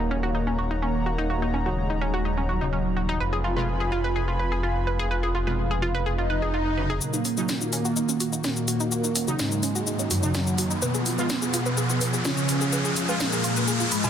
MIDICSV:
0, 0, Header, 1, 9, 480
1, 0, Start_track
1, 0, Key_signature, -6, "minor"
1, 0, Tempo, 476190
1, 1309, Time_signature, 4, 2, 24, 8
1, 14212, End_track
2, 0, Start_track
2, 0, Title_t, "Synth arpeggio sound"
2, 0, Program_c, 0, 84
2, 0, Note_on_c, 0, 63, 74
2, 103, Note_off_c, 0, 63, 0
2, 109, Note_on_c, 0, 61, 102
2, 205, Note_off_c, 0, 61, 0
2, 233, Note_on_c, 0, 66, 95
2, 323, Note_off_c, 0, 66, 0
2, 349, Note_on_c, 0, 63, 80
2, 445, Note_off_c, 0, 63, 0
2, 474, Note_on_c, 0, 61, 73
2, 527, Note_off_c, 0, 61, 0
2, 589, Note_on_c, 0, 66, 76
2, 647, Note_off_c, 0, 66, 0
2, 714, Note_on_c, 0, 63, 74
2, 767, Note_off_c, 0, 63, 0
2, 830, Note_on_c, 0, 61, 80
2, 925, Note_off_c, 0, 61, 0
2, 1069, Note_on_c, 0, 66, 76
2, 1165, Note_off_c, 0, 66, 0
2, 1193, Note_on_c, 0, 63, 99
2, 1283, Note_off_c, 0, 63, 0
2, 1309, Note_on_c, 0, 66, 79
2, 1405, Note_off_c, 0, 66, 0
2, 1434, Note_on_c, 0, 63, 73
2, 1487, Note_off_c, 0, 63, 0
2, 1549, Note_on_c, 0, 61, 77
2, 1645, Note_off_c, 0, 61, 0
2, 1673, Note_on_c, 0, 66, 74
2, 1763, Note_off_c, 0, 66, 0
2, 1914, Note_on_c, 0, 63, 77
2, 2024, Note_off_c, 0, 63, 0
2, 2030, Note_on_c, 0, 61, 103
2, 2125, Note_off_c, 0, 61, 0
2, 2153, Note_on_c, 0, 66, 95
2, 2243, Note_off_c, 0, 66, 0
2, 2269, Note_on_c, 0, 63, 81
2, 2365, Note_off_c, 0, 63, 0
2, 2393, Note_on_c, 0, 61, 77
2, 2447, Note_off_c, 0, 61, 0
2, 2509, Note_on_c, 0, 66, 75
2, 2566, Note_off_c, 0, 66, 0
2, 2633, Note_on_c, 0, 63, 75
2, 2687, Note_off_c, 0, 63, 0
2, 2749, Note_on_c, 0, 61, 83
2, 2845, Note_off_c, 0, 61, 0
2, 2989, Note_on_c, 0, 66, 74
2, 3085, Note_off_c, 0, 66, 0
2, 3113, Note_on_c, 0, 63, 101
2, 3203, Note_off_c, 0, 63, 0
2, 3230, Note_on_c, 0, 71, 82
2, 3325, Note_off_c, 0, 71, 0
2, 3354, Note_on_c, 0, 68, 76
2, 3407, Note_off_c, 0, 68, 0
2, 3470, Note_on_c, 0, 65, 76
2, 3565, Note_off_c, 0, 65, 0
2, 3594, Note_on_c, 0, 71, 75
2, 3683, Note_off_c, 0, 71, 0
2, 3834, Note_on_c, 0, 68, 74
2, 3944, Note_off_c, 0, 68, 0
2, 3950, Note_on_c, 0, 65, 102
2, 4045, Note_off_c, 0, 65, 0
2, 4074, Note_on_c, 0, 71, 94
2, 4163, Note_off_c, 0, 71, 0
2, 4190, Note_on_c, 0, 68, 80
2, 4285, Note_off_c, 0, 68, 0
2, 4313, Note_on_c, 0, 65, 75
2, 4367, Note_off_c, 0, 65, 0
2, 4430, Note_on_c, 0, 71, 74
2, 4487, Note_off_c, 0, 71, 0
2, 4554, Note_on_c, 0, 68, 73
2, 4607, Note_off_c, 0, 68, 0
2, 4670, Note_on_c, 0, 65, 83
2, 4765, Note_off_c, 0, 65, 0
2, 4910, Note_on_c, 0, 71, 74
2, 5005, Note_off_c, 0, 71, 0
2, 5033, Note_on_c, 0, 68, 99
2, 5123, Note_off_c, 0, 68, 0
2, 5149, Note_on_c, 0, 71, 82
2, 5245, Note_off_c, 0, 71, 0
2, 5274, Note_on_c, 0, 68, 74
2, 5327, Note_off_c, 0, 68, 0
2, 5390, Note_on_c, 0, 65, 76
2, 5485, Note_off_c, 0, 65, 0
2, 5514, Note_on_c, 0, 71, 74
2, 5603, Note_off_c, 0, 71, 0
2, 5753, Note_on_c, 0, 68, 75
2, 5863, Note_off_c, 0, 68, 0
2, 5869, Note_on_c, 0, 65, 103
2, 5965, Note_off_c, 0, 65, 0
2, 5993, Note_on_c, 0, 71, 95
2, 6082, Note_off_c, 0, 71, 0
2, 6110, Note_on_c, 0, 68, 79
2, 6205, Note_off_c, 0, 68, 0
2, 6233, Note_on_c, 0, 65, 74
2, 6287, Note_off_c, 0, 65, 0
2, 6349, Note_on_c, 0, 71, 76
2, 6406, Note_off_c, 0, 71, 0
2, 6473, Note_on_c, 0, 68, 73
2, 6527, Note_off_c, 0, 68, 0
2, 6589, Note_on_c, 0, 65, 82
2, 6685, Note_off_c, 0, 65, 0
2, 6829, Note_on_c, 0, 71, 76
2, 6925, Note_off_c, 0, 71, 0
2, 6953, Note_on_c, 0, 68, 103
2, 7042, Note_off_c, 0, 68, 0
2, 7069, Note_on_c, 0, 66, 80
2, 7165, Note_off_c, 0, 66, 0
2, 7192, Note_on_c, 0, 63, 77
2, 7246, Note_off_c, 0, 63, 0
2, 7309, Note_on_c, 0, 61, 79
2, 7405, Note_off_c, 0, 61, 0
2, 7433, Note_on_c, 0, 66, 72
2, 7522, Note_off_c, 0, 66, 0
2, 7673, Note_on_c, 0, 63, 76
2, 7783, Note_off_c, 0, 63, 0
2, 7789, Note_on_c, 0, 61, 102
2, 7885, Note_off_c, 0, 61, 0
2, 7912, Note_on_c, 0, 66, 96
2, 8002, Note_off_c, 0, 66, 0
2, 8028, Note_on_c, 0, 63, 83
2, 8124, Note_off_c, 0, 63, 0
2, 8152, Note_on_c, 0, 61, 74
2, 8206, Note_off_c, 0, 61, 0
2, 8268, Note_on_c, 0, 66, 75
2, 8326, Note_off_c, 0, 66, 0
2, 8392, Note_on_c, 0, 63, 74
2, 8446, Note_off_c, 0, 63, 0
2, 8508, Note_on_c, 0, 61, 81
2, 8604, Note_off_c, 0, 61, 0
2, 8748, Note_on_c, 0, 66, 75
2, 8844, Note_off_c, 0, 66, 0
2, 8873, Note_on_c, 0, 63, 105
2, 8962, Note_off_c, 0, 63, 0
2, 8988, Note_on_c, 0, 66, 80
2, 9084, Note_off_c, 0, 66, 0
2, 9112, Note_on_c, 0, 63, 76
2, 9166, Note_off_c, 0, 63, 0
2, 9228, Note_on_c, 0, 61, 78
2, 9324, Note_off_c, 0, 61, 0
2, 9352, Note_on_c, 0, 66, 75
2, 9442, Note_off_c, 0, 66, 0
2, 9592, Note_on_c, 0, 63, 77
2, 9703, Note_off_c, 0, 63, 0
2, 9708, Note_on_c, 0, 61, 105
2, 9804, Note_off_c, 0, 61, 0
2, 9831, Note_on_c, 0, 66, 99
2, 9922, Note_off_c, 0, 66, 0
2, 9948, Note_on_c, 0, 63, 80
2, 10044, Note_off_c, 0, 63, 0
2, 10072, Note_on_c, 0, 61, 76
2, 10126, Note_off_c, 0, 61, 0
2, 10188, Note_on_c, 0, 66, 74
2, 10246, Note_off_c, 0, 66, 0
2, 10312, Note_on_c, 0, 63, 74
2, 10366, Note_off_c, 0, 63, 0
2, 10428, Note_on_c, 0, 61, 82
2, 10524, Note_off_c, 0, 61, 0
2, 10668, Note_on_c, 0, 66, 77
2, 10764, Note_off_c, 0, 66, 0
2, 10792, Note_on_c, 0, 63, 102
2, 10882, Note_off_c, 0, 63, 0
2, 10908, Note_on_c, 0, 71, 84
2, 11004, Note_off_c, 0, 71, 0
2, 11033, Note_on_c, 0, 68, 78
2, 11087, Note_off_c, 0, 68, 0
2, 11148, Note_on_c, 0, 65, 79
2, 11244, Note_off_c, 0, 65, 0
2, 11273, Note_on_c, 0, 71, 76
2, 11363, Note_off_c, 0, 71, 0
2, 11512, Note_on_c, 0, 68, 78
2, 11623, Note_off_c, 0, 68, 0
2, 11628, Note_on_c, 0, 65, 106
2, 11724, Note_off_c, 0, 65, 0
2, 11752, Note_on_c, 0, 71, 99
2, 11842, Note_off_c, 0, 71, 0
2, 11868, Note_on_c, 0, 68, 83
2, 11964, Note_off_c, 0, 68, 0
2, 11992, Note_on_c, 0, 65, 76
2, 12046, Note_off_c, 0, 65, 0
2, 12108, Note_on_c, 0, 71, 76
2, 12166, Note_off_c, 0, 71, 0
2, 12232, Note_on_c, 0, 68, 75
2, 12286, Note_off_c, 0, 68, 0
2, 12348, Note_on_c, 0, 65, 84
2, 12444, Note_off_c, 0, 65, 0
2, 12588, Note_on_c, 0, 71, 77
2, 12684, Note_off_c, 0, 71, 0
2, 12712, Note_on_c, 0, 68, 104
2, 12802, Note_off_c, 0, 68, 0
2, 12828, Note_on_c, 0, 71, 85
2, 12924, Note_off_c, 0, 71, 0
2, 12952, Note_on_c, 0, 68, 77
2, 13006, Note_off_c, 0, 68, 0
2, 13068, Note_on_c, 0, 65, 79
2, 13164, Note_off_c, 0, 65, 0
2, 13192, Note_on_c, 0, 71, 77
2, 13282, Note_off_c, 0, 71, 0
2, 13433, Note_on_c, 0, 68, 77
2, 13543, Note_off_c, 0, 68, 0
2, 13548, Note_on_c, 0, 65, 103
2, 13644, Note_off_c, 0, 65, 0
2, 13672, Note_on_c, 0, 71, 99
2, 13762, Note_off_c, 0, 71, 0
2, 13789, Note_on_c, 0, 68, 80
2, 13885, Note_off_c, 0, 68, 0
2, 13912, Note_on_c, 0, 65, 76
2, 13966, Note_off_c, 0, 65, 0
2, 14028, Note_on_c, 0, 83, 75
2, 14124, Note_off_c, 0, 83, 0
2, 14152, Note_on_c, 0, 80, 99
2, 14212, Note_off_c, 0, 80, 0
2, 14212, End_track
3, 0, Start_track
3, 0, Title_t, "Analog synth pad"
3, 0, Program_c, 1, 89
3, 0, Note_on_c, 1, 63, 85
3, 0, Note_on_c, 1, 73, 76
3, 0, Note_on_c, 1, 78, 76
3, 0, Note_on_c, 1, 82, 90
3, 3190, Note_off_c, 1, 63, 0
3, 3190, Note_off_c, 1, 73, 0
3, 3190, Note_off_c, 1, 78, 0
3, 3191, Note_off_c, 1, 82, 0
3, 3229, Note_on_c, 1, 65, 84
3, 3229, Note_on_c, 1, 71, 77
3, 3229, Note_on_c, 1, 80, 77
3, 3230, Note_on_c, 1, 83, 94
3, 7031, Note_off_c, 1, 65, 0
3, 7031, Note_off_c, 1, 71, 0
3, 7031, Note_off_c, 1, 80, 0
3, 7031, Note_off_c, 1, 83, 0
3, 7068, Note_on_c, 1, 58, 77
3, 7069, Note_on_c, 1, 51, 84
3, 7069, Note_on_c, 1, 65, 75
3, 7069, Note_on_c, 1, 66, 89
3, 8970, Note_off_c, 1, 65, 0
3, 8989, Note_on_c, 1, 63, 77
3, 10870, Note_off_c, 1, 58, 0
3, 10871, Note_off_c, 1, 51, 0
3, 10871, Note_off_c, 1, 66, 0
3, 10890, Note_off_c, 1, 63, 0
3, 10909, Note_on_c, 1, 53, 83
3, 10909, Note_on_c, 1, 65, 77
3, 10909, Note_on_c, 1, 68, 95
3, 14212, Note_off_c, 1, 53, 0
3, 14212, Note_off_c, 1, 65, 0
3, 14212, Note_off_c, 1, 68, 0
3, 14212, End_track
4, 0, Start_track
4, 0, Title_t, "Analog polysynth"
4, 0, Program_c, 2, 90
4, 0, Note_on_c, 2, 58, 113
4, 736, Note_off_c, 2, 58, 0
4, 829, Note_on_c, 2, 58, 101
4, 1696, Note_off_c, 2, 58, 0
4, 1789, Note_on_c, 2, 56, 96
4, 2416, Note_off_c, 2, 56, 0
4, 2509, Note_on_c, 2, 54, 99
4, 3136, Note_off_c, 2, 54, 0
4, 3229, Note_on_c, 2, 65, 113
4, 4576, Note_off_c, 2, 65, 0
4, 4670, Note_on_c, 2, 65, 103
4, 5537, Note_off_c, 2, 65, 0
4, 5629, Note_on_c, 2, 65, 98
4, 6256, Note_off_c, 2, 65, 0
4, 6350, Note_on_c, 2, 63, 101
4, 6977, Note_off_c, 2, 63, 0
4, 7069, Note_on_c, 2, 46, 89
4, 7069, Note_on_c, 2, 58, 115
4, 8416, Note_off_c, 2, 46, 0
4, 8416, Note_off_c, 2, 58, 0
4, 8508, Note_on_c, 2, 46, 84
4, 8509, Note_on_c, 2, 58, 103
4, 9376, Note_off_c, 2, 46, 0
4, 9376, Note_off_c, 2, 58, 0
4, 9469, Note_on_c, 2, 44, 82
4, 9469, Note_on_c, 2, 56, 102
4, 10096, Note_off_c, 2, 44, 0
4, 10096, Note_off_c, 2, 56, 0
4, 10188, Note_on_c, 2, 42, 82
4, 10188, Note_on_c, 2, 54, 101
4, 10816, Note_off_c, 2, 42, 0
4, 10816, Note_off_c, 2, 54, 0
4, 10908, Note_on_c, 2, 47, 88
4, 10909, Note_on_c, 2, 59, 119
4, 12256, Note_off_c, 2, 47, 0
4, 12256, Note_off_c, 2, 59, 0
4, 12350, Note_on_c, 2, 49, 86
4, 12350, Note_on_c, 2, 61, 107
4, 13217, Note_off_c, 2, 49, 0
4, 13217, Note_off_c, 2, 61, 0
4, 13310, Note_on_c, 2, 46, 83
4, 13310, Note_on_c, 2, 58, 101
4, 13937, Note_off_c, 2, 46, 0
4, 13937, Note_off_c, 2, 58, 0
4, 14030, Note_on_c, 2, 44, 85
4, 14030, Note_on_c, 2, 56, 102
4, 14212, Note_off_c, 2, 44, 0
4, 14212, Note_off_c, 2, 56, 0
4, 14212, End_track
5, 0, Start_track
5, 0, Title_t, "Synth stab"
5, 0, Program_c, 3, 62
5, 1673, Note_on_c, 3, 63, 80
5, 1674, Note_on_c, 3, 49, 74
5, 1674, Note_on_c, 3, 54, 67
5, 2604, Note_off_c, 3, 49, 0
5, 2604, Note_off_c, 3, 54, 0
5, 2604, Note_off_c, 3, 63, 0
5, 2633, Note_on_c, 3, 49, 73
5, 2633, Note_on_c, 3, 54, 68
5, 2633, Note_on_c, 3, 63, 81
5, 3215, Note_off_c, 3, 49, 0
5, 3215, Note_off_c, 3, 54, 0
5, 3215, Note_off_c, 3, 63, 0
5, 3593, Note_on_c, 3, 47, 94
5, 3593, Note_on_c, 3, 56, 85
5, 3593, Note_on_c, 3, 65, 103
5, 3692, Note_off_c, 3, 47, 0
5, 3692, Note_off_c, 3, 56, 0
5, 3692, Note_off_c, 3, 65, 0
5, 5513, Note_on_c, 3, 47, 74
5, 5513, Note_on_c, 3, 56, 67
5, 5513, Note_on_c, 3, 65, 81
5, 6443, Note_off_c, 3, 47, 0
5, 6443, Note_off_c, 3, 56, 0
5, 6444, Note_off_c, 3, 65, 0
5, 6829, Note_on_c, 3, 54, 67
5, 6830, Note_on_c, 3, 49, 73
5, 6830, Note_on_c, 3, 63, 80
5, 7309, Note_off_c, 3, 49, 0
5, 7309, Note_off_c, 3, 54, 0
5, 7309, Note_off_c, 3, 63, 0
5, 7433, Note_on_c, 3, 49, 96
5, 7433, Note_on_c, 3, 54, 84
5, 7433, Note_on_c, 3, 63, 102
5, 7532, Note_off_c, 3, 49, 0
5, 7532, Note_off_c, 3, 54, 0
5, 7532, Note_off_c, 3, 63, 0
5, 9353, Note_on_c, 3, 49, 76
5, 9353, Note_on_c, 3, 54, 67
5, 9353, Note_on_c, 3, 63, 83
5, 10283, Note_off_c, 3, 49, 0
5, 10283, Note_off_c, 3, 54, 0
5, 10283, Note_off_c, 3, 63, 0
5, 10313, Note_on_c, 3, 49, 74
5, 10313, Note_on_c, 3, 54, 67
5, 10313, Note_on_c, 3, 63, 82
5, 10895, Note_off_c, 3, 49, 0
5, 10895, Note_off_c, 3, 54, 0
5, 10895, Note_off_c, 3, 63, 0
5, 11273, Note_on_c, 3, 47, 97
5, 11273, Note_on_c, 3, 56, 89
5, 11273, Note_on_c, 3, 65, 103
5, 11372, Note_off_c, 3, 47, 0
5, 11372, Note_off_c, 3, 56, 0
5, 11372, Note_off_c, 3, 65, 0
5, 13193, Note_on_c, 3, 56, 69
5, 13193, Note_on_c, 3, 65, 83
5, 14124, Note_off_c, 3, 56, 0
5, 14124, Note_off_c, 3, 65, 0
5, 14153, Note_on_c, 3, 47, 94
5, 14153, Note_on_c, 3, 56, 87
5, 14153, Note_on_c, 3, 65, 103
5, 14212, Note_off_c, 3, 47, 0
5, 14212, Note_off_c, 3, 56, 0
5, 14212, Note_off_c, 3, 65, 0
5, 14212, End_track
6, 0, Start_track
6, 0, Title_t, "Detuned saw bass"
6, 0, Program_c, 4, 39
6, 0, Note_on_c, 4, 27, 86
6, 3206, Note_off_c, 4, 27, 0
6, 3229, Note_on_c, 4, 29, 89
6, 7046, Note_off_c, 4, 29, 0
6, 14212, End_track
7, 0, Start_track
7, 0, Title_t, "Riser"
7, 0, Program_c, 5, 103
7, 7069, Note_on_c, 5, 60, 78
7, 14212, Note_off_c, 5, 60, 0
7, 14212, End_track
8, 0, Start_track
8, 0, Title_t, "Swell"
8, 0, Program_c, 6, 103
8, 6109, Note_on_c, 6, 60, 73
8, 7069, Note_off_c, 6, 60, 0
8, 14212, End_track
9, 0, Start_track
9, 0, Title_t, "Drums"
9, 7069, Note_on_c, 9, 82, 66
9, 7170, Note_off_c, 9, 82, 0
9, 7193, Note_on_c, 9, 82, 46
9, 7294, Note_off_c, 9, 82, 0
9, 7309, Note_on_c, 9, 46, 105
9, 7309, Note_on_c, 9, 82, 68
9, 7410, Note_off_c, 9, 46, 0
9, 7410, Note_off_c, 9, 82, 0
9, 7433, Note_on_c, 9, 82, 43
9, 7533, Note_off_c, 9, 82, 0
9, 7549, Note_on_c, 9, 38, 123
9, 7549, Note_on_c, 9, 82, 67
9, 7650, Note_off_c, 9, 38, 0
9, 7650, Note_off_c, 9, 82, 0
9, 7673, Note_on_c, 9, 82, 46
9, 7774, Note_off_c, 9, 82, 0
9, 7789, Note_on_c, 9, 46, 91
9, 7789, Note_on_c, 9, 82, 69
9, 7890, Note_off_c, 9, 46, 0
9, 7890, Note_off_c, 9, 82, 0
9, 7913, Note_on_c, 9, 82, 45
9, 8014, Note_off_c, 9, 82, 0
9, 8029, Note_on_c, 9, 82, 68
9, 8130, Note_off_c, 9, 82, 0
9, 8153, Note_on_c, 9, 82, 45
9, 8254, Note_off_c, 9, 82, 0
9, 8270, Note_on_c, 9, 46, 101
9, 8270, Note_on_c, 9, 82, 69
9, 8371, Note_off_c, 9, 46, 0
9, 8371, Note_off_c, 9, 82, 0
9, 8394, Note_on_c, 9, 82, 46
9, 8495, Note_off_c, 9, 82, 0
9, 8510, Note_on_c, 9, 38, 123
9, 8510, Note_on_c, 9, 82, 69
9, 8610, Note_off_c, 9, 38, 0
9, 8610, Note_off_c, 9, 82, 0
9, 8633, Note_on_c, 9, 82, 44
9, 8734, Note_off_c, 9, 82, 0
9, 8749, Note_on_c, 9, 46, 91
9, 8749, Note_on_c, 9, 82, 69
9, 8850, Note_off_c, 9, 46, 0
9, 8850, Note_off_c, 9, 82, 0
9, 8873, Note_on_c, 9, 82, 46
9, 8974, Note_off_c, 9, 82, 0
9, 8989, Note_on_c, 9, 82, 68
9, 9090, Note_off_c, 9, 82, 0
9, 9113, Note_on_c, 9, 82, 45
9, 9213, Note_off_c, 9, 82, 0
9, 9228, Note_on_c, 9, 46, 108
9, 9228, Note_on_c, 9, 82, 65
9, 9329, Note_off_c, 9, 46, 0
9, 9329, Note_off_c, 9, 82, 0
9, 9353, Note_on_c, 9, 82, 44
9, 9453, Note_off_c, 9, 82, 0
9, 9468, Note_on_c, 9, 38, 124
9, 9468, Note_on_c, 9, 82, 69
9, 9569, Note_off_c, 9, 38, 0
9, 9569, Note_off_c, 9, 82, 0
9, 9592, Note_on_c, 9, 82, 43
9, 9693, Note_off_c, 9, 82, 0
9, 9708, Note_on_c, 9, 46, 93
9, 9708, Note_on_c, 9, 82, 68
9, 9809, Note_off_c, 9, 46, 0
9, 9809, Note_off_c, 9, 82, 0
9, 9833, Note_on_c, 9, 82, 43
9, 9933, Note_off_c, 9, 82, 0
9, 9948, Note_on_c, 9, 82, 64
9, 10049, Note_off_c, 9, 82, 0
9, 10073, Note_on_c, 9, 82, 43
9, 10173, Note_off_c, 9, 82, 0
9, 10189, Note_on_c, 9, 46, 106
9, 10189, Note_on_c, 9, 82, 68
9, 10289, Note_off_c, 9, 46, 0
9, 10289, Note_off_c, 9, 82, 0
9, 10313, Note_on_c, 9, 82, 44
9, 10414, Note_off_c, 9, 82, 0
9, 10428, Note_on_c, 9, 38, 126
9, 10428, Note_on_c, 9, 82, 68
9, 10529, Note_off_c, 9, 38, 0
9, 10529, Note_off_c, 9, 82, 0
9, 10553, Note_on_c, 9, 82, 44
9, 10654, Note_off_c, 9, 82, 0
9, 10669, Note_on_c, 9, 46, 95
9, 10669, Note_on_c, 9, 82, 66
9, 10769, Note_off_c, 9, 46, 0
9, 10769, Note_off_c, 9, 82, 0
9, 10793, Note_on_c, 9, 82, 44
9, 10893, Note_off_c, 9, 82, 0
9, 10908, Note_on_c, 9, 82, 66
9, 11009, Note_off_c, 9, 82, 0
9, 11033, Note_on_c, 9, 82, 44
9, 11133, Note_off_c, 9, 82, 0
9, 11148, Note_on_c, 9, 46, 108
9, 11148, Note_on_c, 9, 82, 66
9, 11249, Note_off_c, 9, 46, 0
9, 11249, Note_off_c, 9, 82, 0
9, 11273, Note_on_c, 9, 82, 42
9, 11374, Note_off_c, 9, 82, 0
9, 11388, Note_on_c, 9, 38, 119
9, 11388, Note_on_c, 9, 82, 65
9, 11489, Note_off_c, 9, 38, 0
9, 11489, Note_off_c, 9, 82, 0
9, 11513, Note_on_c, 9, 82, 42
9, 11614, Note_off_c, 9, 82, 0
9, 11629, Note_on_c, 9, 46, 96
9, 11629, Note_on_c, 9, 82, 66
9, 11730, Note_off_c, 9, 46, 0
9, 11730, Note_off_c, 9, 82, 0
9, 11753, Note_on_c, 9, 82, 42
9, 11853, Note_off_c, 9, 82, 0
9, 11868, Note_on_c, 9, 82, 62
9, 11969, Note_off_c, 9, 82, 0
9, 11993, Note_on_c, 9, 82, 42
9, 12094, Note_off_c, 9, 82, 0
9, 12109, Note_on_c, 9, 46, 112
9, 12109, Note_on_c, 9, 82, 66
9, 12210, Note_off_c, 9, 46, 0
9, 12210, Note_off_c, 9, 82, 0
9, 12233, Note_on_c, 9, 82, 43
9, 12333, Note_off_c, 9, 82, 0
9, 12349, Note_on_c, 9, 38, 118
9, 12349, Note_on_c, 9, 82, 67
9, 12450, Note_off_c, 9, 38, 0
9, 12450, Note_off_c, 9, 82, 0
9, 12473, Note_on_c, 9, 82, 42
9, 12573, Note_off_c, 9, 82, 0
9, 12589, Note_on_c, 9, 46, 94
9, 12589, Note_on_c, 9, 82, 65
9, 12690, Note_off_c, 9, 46, 0
9, 12690, Note_off_c, 9, 82, 0
9, 12713, Note_on_c, 9, 82, 44
9, 12814, Note_off_c, 9, 82, 0
9, 12828, Note_on_c, 9, 82, 64
9, 12929, Note_off_c, 9, 82, 0
9, 12953, Note_on_c, 9, 82, 43
9, 13054, Note_off_c, 9, 82, 0
9, 13069, Note_on_c, 9, 46, 111
9, 13069, Note_on_c, 9, 82, 65
9, 13169, Note_off_c, 9, 46, 0
9, 13169, Note_off_c, 9, 82, 0
9, 13194, Note_on_c, 9, 82, 42
9, 13294, Note_off_c, 9, 82, 0
9, 13309, Note_on_c, 9, 38, 118
9, 13309, Note_on_c, 9, 82, 64
9, 13410, Note_off_c, 9, 38, 0
9, 13410, Note_off_c, 9, 82, 0
9, 13433, Note_on_c, 9, 82, 42
9, 13534, Note_off_c, 9, 82, 0
9, 13549, Note_on_c, 9, 46, 94
9, 13549, Note_on_c, 9, 82, 66
9, 13650, Note_off_c, 9, 46, 0
9, 13650, Note_off_c, 9, 82, 0
9, 13673, Note_on_c, 9, 82, 41
9, 13774, Note_off_c, 9, 82, 0
9, 13789, Note_on_c, 9, 82, 63
9, 13890, Note_off_c, 9, 82, 0
9, 13913, Note_on_c, 9, 82, 42
9, 14014, Note_off_c, 9, 82, 0
9, 14029, Note_on_c, 9, 46, 107
9, 14029, Note_on_c, 9, 82, 64
9, 14130, Note_off_c, 9, 46, 0
9, 14130, Note_off_c, 9, 82, 0
9, 14153, Note_on_c, 9, 82, 42
9, 14212, Note_off_c, 9, 82, 0
9, 14212, End_track
0, 0, End_of_file